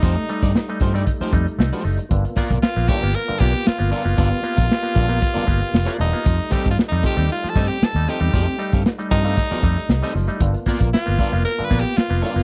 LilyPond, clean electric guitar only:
\new Staff \with { instrumentName = "Clean electric guitar" } { \time 4/4 \key f \mixolydian \tempo 4 = 116 <a ees' g' c''>8 r16 <a ees' g' d''>16 r8 <a ees' g' c''>16 <a ees' g' d''>16 r16 <a ees' g' c''>8 r8 <a ees' g' c''>8 r16 | r8 <b f' ais' d''>8 r8 <b f' ais' d''>8 r8 <b f' ais' d''>8 r8 <b f' ais' d''>8 | <b f' ais' d''>8 r16 <b f' ais' f''>16 r8 <b f' ais' d''>16 <b f' ais' f''>16 r16 <b f' ais' d''>8 r8 <b f' ais' d''>8 r16 | r8 <c' g' a' ees''>8 r8 <c' g' a' ees''>8 r8 <c' g' a' ees''>8 r8 <c' g' a' ees''>8 |
<c' g' a' ees''>8 r16 <c' g' a' f''>16 r8 <c' g' a' ees''>16 <c' g' a' f''>16 r16 <c' g' a' ees''>8 r8 <c' g' a' ees''>8 r16 | r8 <b f' ais' d''>8 r8 <b f' ais' d''>8 r8 <b f' ais' d''>8 r8 <b f' ais' d''>8 | }